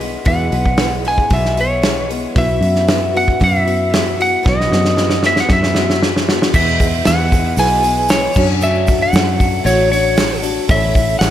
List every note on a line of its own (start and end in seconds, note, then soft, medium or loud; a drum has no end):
0.00 0.16 B1 loud
0.00 0.25 E3 soft
0.00 0.25 G#3 soft
0.00 0.25 B3 soft
0.00 0.25 G#4 medium
0.00 open hi-hat medium
0.25 0.52 E2 medium
0.25 0.50 E2 medium
0.25 0.52 B2 medium
0.25 0.53 E3 medium
0.25 0.53 G#3 medium
0.25 0.51 B3 medium
0.25 0.64 E4 medium
0.25 0.51 G#4 medium
0.25 0.65 G#4 medium
0.25 1.02 F#5 medium
0.25 kick loud
0.25 open hi-hat medium
0.29 0.65 B4 medium
0.51 1.23 B1 medium
0.51 0.78 E3 soft
0.51 0.79 G#3 soft
0.51 0.79 B3 medium
0.51 0.79 G#4 medium
0.51 open hi-hat medium
0.66 kick medium
0.78 1.06 E3 medium
0.78 1.06 G#3 medium
0.78 1.06 B3 medium
0.78 1.53 E4 medium
0.78 1.54 G#4 medium
0.78 1.55 B4 medium
0.78 snare loud
0.78 open hi-hat medium
0.82 1.05 G#4 medium
1.05 1.31 G#3 soft
1.05 1.32 B3 soft
1.05 1.32 G#4 medium
1.05 1.33 G#5 loud
1.05 open hi-hat medium
1.09 1.31 E3 soft
1.18 kick medium
1.30 2.25 B1 medium
1.30 1.58 E2 medium
1.30 1.58 B2 medium
1.30 1.58 E3 medium
1.30 1.58 G#3 medium
1.30 1.57 B3 medium
1.30 1.56 G#4 medium
1.30 1.59 E5 medium
1.30 kick medium
1.30 open hi-hat medium
1.45 snare soft
1.57 1.81 E3 soft
1.57 1.82 G#3 soft
1.57 1.83 B3 medium
1.57 1.83 G#4 medium
1.57 2.08 C#5 medium
1.57 open hi-hat medium
1.82 2.09 E3 medium
1.82 2.09 G#3 medium
1.82 2.08 B3 medium
1.82 2.08 G#4 medium
1.82 snare loud
1.82 open hi-hat medium
2.09 2.35 E3 soft
2.09 2.36 G#3 soft
2.09 2.36 B3 soft
2.09 2.36 G#4 soft
2.09 open hi-hat medium
2.35 2.60 B1 medium
2.35 2.63 B2 medium
2.35 2.63 E3 medium
2.35 2.62 B3 medium
2.35 2.73 E4 medium
2.35 2.60 E4 medium
2.35 2.73 F#4 medium
2.35 2.60 F#4 medium
2.35 2.74 B4 medium
2.35 3.17 E5 medium
2.35 kick loud
2.35 open hi-hat medium
2.61 3.32 F#2 medium
2.61 2.87 B3 soft
2.61 2.88 E4 medium
2.61 2.88 F#4 medium
2.61 open hi-hat medium
2.76 snare soft
2.87 3.14 E3 medium
2.87 3.14 B3 medium
2.87 3.63 E4 medium
2.87 3.13 E4 medium
2.87 3.63 F#4 medium
2.87 3.12 F#4 medium
2.87 3.64 B4 medium
2.87 snare loud
2.87 open hi-hat medium
3.13 3.39 B3 soft
3.13 3.40 E4 medium
3.13 3.40 F#4 medium
3.13 3.43 F#5 medium
3.13 open hi-hat medium
3.28 kick medium
3.40 4.35 F#2 loud
3.40 3.67 B2 medium
3.40 3.67 E3 medium
3.40 3.65 B3 medium
3.40 3.64 E4 medium
3.40 3.64 F#4 medium
3.40 kick medium
3.40 open hi-hat medium
3.44 4.23 E5 loud
3.65 3.89 B3 soft
3.65 3.90 E4 medium
3.65 3.90 F#4 medium
3.65 open hi-hat medium
3.90 4.18 E3 medium
3.90 4.18 B3 medium
3.90 4.17 E4 medium
3.90 4.16 F#4 medium
3.90 open hi-hat medium
3.94 snare loud
4.17 4.42 B3 soft
4.17 4.43 E4 soft
4.17 4.44 F#4 medium
4.17 open hi-hat soft
4.22 4.48 F#5 loud
4.43 4.69 B1 medium
4.43 4.70 B2 medium
4.43 4.71 E3 medium
4.43 4.70 B3 medium
4.43 4.69 E4 medium
4.43 4.83 E4 medium
4.43 4.68 F#4 medium
4.43 kick loud
4.43 snare medium
4.47 4.83 F#4 medium
4.47 4.84 B4 medium
4.47 5.26 D#5 medium
4.61 snare soft
4.69 5.42 F#2 medium
4.69 4.96 B3 soft
4.69 4.97 E4 soft
4.69 4.96 F#4 medium
4.69 snare medium
4.85 snare medium
4.96 5.23 E3 medium
4.96 5.24 B3 medium
4.96 5.72 E4 medium
4.96 5.23 E4 medium
4.96 5.72 F#4 medium
4.96 5.22 F#4 medium
4.96 5.73 B4 medium
4.96 snare medium
5.10 snare medium
5.23 5.51 B3 soft
5.23 5.50 E4 soft
5.23 5.50 F#4 soft
5.23 5.39 E5 medium
5.23 snare medium
5.36 snare medium
5.40 5.52 F#5 medium
5.49 6.44 F#2 loud
5.49 5.77 B2 medium
5.49 5.77 E3 medium
5.49 5.76 B3 medium
5.49 5.76 E4 medium
5.49 5.74 F#4 medium
5.49 6.00 E5 medium
5.49 kick loud
5.49 snare medium
5.63 snare medium
5.75 6.01 B3 soft
5.75 6.03 E4 soft
5.75 6.02 F#4 medium
5.75 snare medium
5.90 snare medium
6.03 6.28 E3 medium
6.03 6.28 B3 medium
6.03 6.28 E4 medium
6.03 6.26 F#4 medium
6.03 snare medium
6.17 snare medium
6.28 6.53 B3 soft
6.28 6.54 E4 medium
6.28 6.54 F#4 medium
6.28 snare medium
6.42 snare medium
6.53 6.80 E2 medium
6.53 7.01 E2 loud
6.53 6.80 B2 medium
6.53 6.80 E3 medium
6.53 6.80 G#3 medium
6.53 6.79 B3 medium
6.53 7.28 E4 medium
6.53 7.29 G#4 medium
6.53 6.79 G#4 medium
6.53 7.29 B4 medium
6.53 7.09 E5 loud
6.53 kick loud
6.53 crash loud
6.53 shaker medium
6.68 shaker soft
6.80 7.04 E3 soft
6.80 7.05 G#3 soft
6.80 7.06 B3 medium
6.80 7.06 G#4 medium
6.80 kick medium
6.80 open hi-hat medium
6.80 shaker medium
6.94 shaker soft
7.05 7.53 E2 medium
7.05 7.32 E3 medium
7.05 7.32 G#3 medium
7.05 7.33 B3 medium
7.05 7.31 G#4 medium
7.05 7.60 F#5 loud
7.05 snare loud
7.05 open hi-hat medium
7.05 shaker loud
7.32 7.57 E3 soft
7.32 7.57 G#3 soft
7.32 7.57 B3 soft
7.32 7.58 G#4 medium
7.32 kick medium
7.32 open hi-hat medium
7.32 shaker medium
7.45 shaker soft
7.57 8.27 B1 medium
7.57 7.84 E2 medium
7.57 7.84 B2 medium
7.57 7.84 E3 medium
7.57 7.83 G#3 medium
7.57 7.83 B3 medium
7.57 8.32 E4 medium
7.57 8.32 G#4 medium
7.57 7.82 G#4 medium
7.57 8.32 B4 medium
7.57 8.12 G#5 loud
7.57 open hi-hat medium
7.57 shaker medium
7.83 8.09 E3 soft
7.83 8.10 G#3 medium
7.83 8.10 B3 soft
7.83 8.09 G#4 medium
7.83 open hi-hat medium
7.83 shaker medium
7.96 shaker soft
8.08 8.36 E3 medium
8.08 8.36 G#3 medium
8.08 8.36 B3 medium
8.08 8.46 C#5 medium
8.08 snare loud
8.08 open hi-hat medium
8.08 shaker loud
8.12 8.35 G#4 medium
8.34 9.06 F#2 loud
8.34 8.61 F#3 soft
8.34 8.61 A3 soft
8.34 8.61 D4 medium
8.34 9.19 D4 medium
8.34 8.61 F#4 medium
8.34 kick loud
8.34 crash loud
8.34 shaker medium
8.38 9.20 F#4 medium
8.38 9.20 C#5 medium
8.61 8.88 F#2 medium
8.61 8.87 C#3 medium
8.61 8.88 F#3 medium
8.61 8.88 A3 medium
8.61 8.88 D4 medium
8.61 8.87 F#4 medium
8.61 9.03 E5 medium
8.61 shaker medium
8.75 shaker soft
8.87 9.11 F#3 soft
8.87 9.14 A3 medium
8.87 9.13 D4 medium
8.87 9.14 F#4 medium
8.87 kick medium
8.87 open hi-hat medium
8.87 shaker medium
9.01 9.62 F#5 medium
9.01 shaker soft
9.12 9.60 F#2 loud
9.12 9.39 F#3 medium
9.12 9.38 A3 medium
9.12 9.38 D4 medium
9.12 9.37 F#4 medium
9.12 snare loud
9.12 open hi-hat medium
9.12 shaker loud
9.27 shaker soft
9.38 9.63 F#3 soft
9.38 9.63 A3 soft
9.38 9.64 D4 medium
9.38 9.64 F#4 medium
9.38 kick medium
9.38 open hi-hat medium
9.38 shaker medium
9.54 shaker soft
9.64 10.58 A1 loud
9.64 9.91 F#2 medium
9.64 9.90 C#3 medium
9.64 9.90 F#3 medium
9.64 9.91 A3 medium
9.64 9.89 D4 medium
9.64 10.39 D4 medium
9.64 9.89 F#4 medium
9.64 10.39 F#4 medium
9.64 9.90 C#5 medium
9.64 10.40 C#5 medium
9.64 open hi-hat medium
9.64 shaker medium
9.90 10.15 F#3 soft
9.90 10.14 A3 medium
9.90 10.16 D4 medium
9.90 10.16 F#4 medium
9.90 10.40 C#5 medium
9.90 open hi-hat medium
9.90 shaker medium
10.06 shaker soft
10.16 10.42 F#3 medium
10.16 10.42 A3 medium
10.16 10.41 D4 medium
10.16 10.40 F#4 medium
10.16 snare loud
10.16 open hi-hat medium
10.16 shaker medium
10.41 10.68 F#3 soft
10.41 10.68 A3 soft
10.41 10.68 D4 medium
10.41 10.68 F#4 medium
10.41 open hi-hat medium
10.41 shaker medium
10.68 11.16 A1 loud
10.68 10.94 A2 medium
10.68 10.94 E3 medium
10.68 10.95 A3 medium
10.68 10.95 C#4 medium
10.68 11.30 E4 medium
10.68 10.94 E4 loud
10.68 11.30 A4 medium
10.68 11.30 C#5 medium
10.68 11.19 E5 medium
10.68 kick loud
10.68 open hi-hat medium
10.68 shaker medium
10.84 shaker soft
10.95 11.20 A3 soft
10.95 11.21 C#4 medium
10.95 11.21 E4 medium
10.95 kick medium
10.95 open hi-hat medium
10.95 shaker medium
11.09 shaker soft
11.19 11.30 A1 loud
11.19 11.30 E3 medium
11.19 11.30 A3 medium
11.19 11.30 C#4 medium
11.19 11.30 E4 medium
11.19 11.30 F#5 medium
11.19 snare loud
11.19 open hi-hat medium
11.19 shaker medium